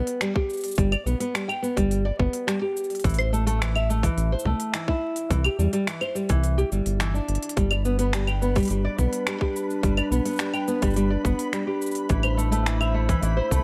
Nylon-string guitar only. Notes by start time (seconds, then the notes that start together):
Already playing: B3
0.21 G3
0.36 G4
0.78 G3
0.92 D5
1.06 B3
1.20 B3
1.34 G3
1.48 G5
1.62 B3
1.76 G3
2.05 D5
2.19 B3
2.47 G3
2.62 G4
3.04 E3
3.18 C5
3.33 A3
3.47 A3
3.61 E3
3.76 E5
3.90 A3
4.04 E3
4.32 C5
4.46 A3
4.74 E3
4.89 E4
5.31 E3
5.45 G4
5.59 G3
5.73 G3
5.87 E3
6.01 C5
6.15 G3
6.29 E3
6.58 G4
6.72 G3
7.00 E3
7.14 D4
7.56 G3
7.71 D5
7.85 B3
7.99 B3
8.14 G3
8.28 G5
8.42 B3
8.56 G3
8.70 G3
8.85 D5
8.99 B3
9.27 G3
9.41 G4
9.83 G3
9.98 D5
10.12 B3
10.25 B3
10.39 G3
10.54 G5
10.68 B3
10.82 G3
10.96 G3
11.10 D5
11.25 B3
11.53 G3
11.67 G4
12.09 E3
12.24 C5
12.37 A3
12.52 A3
12.66 E3
12.80 E5
12.94 A3
13.09 E3
13.23 E3
13.37 C5
13.51 A3